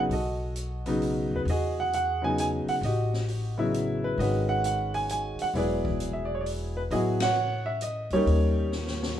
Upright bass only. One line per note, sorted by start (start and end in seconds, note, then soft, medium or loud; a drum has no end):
0.09 1.27 B1 medium
1.31 1.45 D#2 medium
1.45 2.63 E2 medium
2.66 muted upright bass stroke soft
2.81 4.14 A1 medium
4.18 5.35 G#1 medium
5.40 muted upright bass stroke soft
5.54 6.87 E1 medium
6.90 8.08 A1 medium
8.10 8.26 D2 medium
8.26 9.20 D#2 medium